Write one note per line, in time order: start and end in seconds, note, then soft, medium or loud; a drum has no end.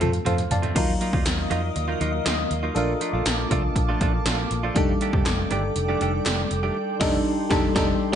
0.00 0.19 F2 medium
0.00 0.71 F3 medium
0.00 0.17 F3 medium
0.00 0.72 A3 medium
0.00 0.13 A3 medium
0.00 0.72 C4 medium
0.00 0.12 C4 medium
0.00 0.25 F4 soft
0.00 0.12 F4 medium
0.00 0.27 A4 medium
0.00 closed hi-hat medium
0.00 mid tom medium
0.13 muted clean electric guitar stroke soft
0.13 closed hi-hat soft
0.25 0.44 F2 medium
0.25 0.42 F3 medium
0.25 0.38 A3 medium
0.25 0.37 C4 medium
0.25 0.37 F4 medium
0.25 0.50 A4 medium
0.25 0.50 C5 medium
0.25 0.49 F5 medium
0.25 closed hi-hat medium
0.25 floor tom medium
0.38 muted clean electric guitar stroke soft
0.38 closed hi-hat medium
0.38 floor tom medium
0.50 0.69 F2 medium
0.50 0.99 D5 soft
0.50 0.99 F5 medium
0.50 0.74 A5 medium
0.50 muted clean electric guitar stroke soft
0.50 closed hi-hat medium
0.50 floor tom medium
0.62 0.75 F3 soft
0.62 0.75 A3 soft
0.62 0.76 C4 medium
0.62 0.75 F4 medium
0.62 closed hi-hat soft
0.62 floor tom medium
0.75 0.94 D#2 medium
0.75 0.92 F#3 medium
0.75 2.72 F#3 medium
0.75 0.92 A#3 medium
0.75 0.92 D#4 medium
0.75 2.72 D#4 medium
0.75 0.93 F4 medium
0.75 2.72 F4 medium
0.75 2.74 A#4 medium
0.75 2.73 A#4 medium
0.75 2.74 D#5 medium
0.75 2.74 F5 medium
0.75 2.74 D#6 medium
0.75 kick loud
0.75 closed hi-hat medium
0.75 crash medium
1.00 1.13 F#3 medium
1.00 1.13 A#3 medium
1.00 1.12 D#4 medium
1.00 1.12 F4 medium
1.00 closed hi-hat medium
1.13 1.22 D#2 medium
1.13 1.24 F#3 soft
1.13 1.25 A#3 medium
1.13 1.25 D#4 medium
1.13 1.25 F4 medium
1.13 kick medium
1.26 1.44 D#2 loud
1.26 muted clean electric guitar stroke soft
1.26 snare loud
1.26 closed hi-hat medium
1.38 muted clean electric guitar stroke soft
1.50 1.69 F2 medium
1.50 1.67 F#3 medium
1.50 1.63 A#3 medium
1.50 1.62 D#4 medium
1.50 1.62 F4 medium
1.50 closed hi-hat medium
1.63 muted clean electric guitar stroke soft
1.76 1.94 D#2 medium
1.76 muted clean electric guitar stroke soft
1.76 closed hi-hat medium
1.88 1.99 F#3 soft
1.88 2.00 A#3 medium
1.88 2.00 D#4 medium
1.88 2.00 F4 medium
2.00 2.19 D#2 medium
2.00 2.17 F#3 medium
2.00 2.13 A#3 medium
2.00 2.12 D#4 medium
2.00 2.12 F4 medium
2.00 closed hi-hat medium
2.13 muted clean electric guitar stroke medium
2.25 2.44 D#2 medium
2.25 2.42 F#3 medium
2.25 2.38 A#3 medium
2.25 2.37 D#4 medium
2.25 2.37 F4 medium
2.25 snare loud
2.25 closed hi-hat medium
2.38 muted clean electric guitar stroke medium
2.51 2.69 D#2 medium
2.51 muted clean electric guitar stroke soft
2.51 closed hi-hat medium
2.63 2.75 F#3 soft
2.63 2.76 A#3 soft
2.63 2.76 D#4 medium
2.63 2.76 F4 medium
2.75 2.94 A#1 medium
2.75 2.92 F3 medium
2.75 2.92 A3 medium
2.75 4.74 A#3 medium
2.75 4.72 D4 medium
2.75 2.93 D4 medium
2.75 4.72 F4 medium
2.75 2.93 F4 medium
2.75 4.71 A4 medium
2.75 4.72 A#4 medium
2.75 4.74 F5 medium
2.75 4.74 A5 medium
2.75 4.74 D6 medium
2.75 closed hi-hat medium
3.01 3.14 F3 medium
3.01 3.13 A3 medium
3.01 3.13 D4 medium
3.01 3.12 F4 medium
3.01 closed hi-hat medium
3.13 3.22 A#1 medium
3.13 3.24 F3 soft
3.13 3.25 A3 medium
3.13 3.25 D4 medium
3.13 3.26 F4 medium
3.26 3.44 A#1 medium
3.26 snare loud
3.26 closed hi-hat medium
3.38 muted clean electric guitar stroke soft
3.51 3.69 C2 medium
3.51 3.67 F3 medium
3.51 3.63 A3 medium
3.51 3.63 D4 medium
3.51 3.62 F4 medium
3.51 kick medium
3.51 closed hi-hat medium
3.63 muted clean electric guitar stroke soft
3.76 3.94 A#1 medium
3.76 muted clean electric guitar stroke soft
3.76 kick medium
3.76 closed hi-hat medium
3.89 4.00 F3 soft
3.89 4.00 A3 medium
3.89 4.01 D4 medium
3.89 4.01 F4 medium
4.01 4.19 A#1 medium
4.01 4.17 F3 medium
4.01 4.13 A3 medium
4.01 4.13 D4 medium
4.01 4.12 F4 medium
4.01 kick medium
4.01 closed hi-hat medium
4.14 muted clean electric guitar stroke soft
4.26 4.44 A#1 loud
4.26 4.42 F3 medium
4.26 4.38 A3 medium
4.26 4.38 D4 medium
4.26 4.37 F4 medium
4.26 snare loud
4.26 closed hi-hat medium
4.38 muted clean electric guitar stroke soft
4.51 4.69 A#1 medium
4.51 muted clean electric guitar stroke soft
4.51 closed hi-hat medium
4.63 4.75 F3 medium
4.63 4.75 A3 medium
4.63 4.76 D4 medium
4.63 4.76 F4 medium
4.75 4.94 F1 medium
4.75 4.92 D#3 medium
4.75 6.71 G3 medium
4.75 4.92 A3 medium
4.75 6.72 D4 medium
4.75 4.93 D4 medium
4.75 6.72 D#4 medium
4.75 4.93 G4 medium
4.75 8.15 A4 medium
4.75 6.73 A4 medium
4.75 8.15 D5 medium
4.75 8.15 G5 medium
4.75 6.74 D6 medium
4.75 kick loud
4.75 closed hi-hat medium
5.01 5.14 D#3 medium
5.01 5.13 A3 medium
5.01 5.13 D4 medium
5.01 5.12 G4 medium
5.01 closed hi-hat medium
5.13 5.22 F1 medium
5.13 5.25 D#3 soft
5.13 5.25 A3 medium
5.13 5.26 D4 medium
5.13 5.26 G4 medium
5.13 kick loud
5.26 5.44 F1 medium
5.26 muted clean electric guitar stroke soft
5.26 snare loud
5.26 clap medium
5.26 closed hi-hat medium
5.39 muted clean electric guitar stroke soft
5.51 5.69 G1 medium
5.51 5.67 D#3 medium
5.51 5.63 A3 medium
5.51 5.63 D4 medium
5.51 5.62 G4 medium
5.51 closed hi-hat medium
5.63 muted clean electric guitar stroke medium
5.76 5.94 F1 medium
5.76 muted clean electric guitar stroke soft
5.76 closed hi-hat medium
5.89 6.00 D#3 medium
5.89 6.00 A3 medium
5.89 6.01 D4 medium
5.89 6.01 G4 medium
6.01 6.19 F1 loud
6.01 6.17 D#3 medium
6.01 6.13 A3 medium
6.01 6.13 D4 medium
6.01 6.12 G4 medium
6.01 closed hi-hat medium
6.13 muted clean electric guitar stroke soft
6.26 6.44 F1 loud
6.26 6.42 D#3 medium
6.26 6.38 A3 medium
6.26 6.38 D4 medium
6.26 6.37 G4 medium
6.26 snare loud
6.26 clap medium
6.26 closed hi-hat medium
6.39 muted clean electric guitar stroke soft
6.51 6.69 F1 loud
6.51 muted clean electric guitar stroke soft
6.51 closed hi-hat medium
6.63 6.76 D#3 medium
6.63 6.76 A3 medium
6.63 6.76 D4 medium
6.63 6.76 G4 medium
6.76 8.15 C6 medium
7.00 7.18 F1 loud
7.00 7.18 D#3 loud
7.00 7.17 G3 loud
7.00 7.18 A3 medium
7.00 7.18 D4 loud
7.00 7.18 D#4 loud
7.00 7.19 G4 medium
7.00 7.19 A4 loud
7.00 kick loud
7.00 snare loud
7.00 crash medium
7.50 7.68 F1 loud
7.50 7.68 D#3 loud
7.50 7.67 G3 medium
7.50 7.68 A3 loud
7.50 7.68 D4 medium
7.50 7.68 D#4 loud
7.50 7.69 G4 loud
7.50 7.69 A4 medium
7.50 kick loud
7.50 snare loud
7.75 7.93 F1 loud
7.75 7.93 D#3 loud
7.75 7.92 G3 medium
7.75 7.93 A3 medium
7.75 7.93 D4 loud
7.75 7.93 D4 medium
7.75 7.93 D#4 medium
7.75 7.93 G4 loud
7.75 7.94 A4 loud
7.75 kick loud
7.75 snare loud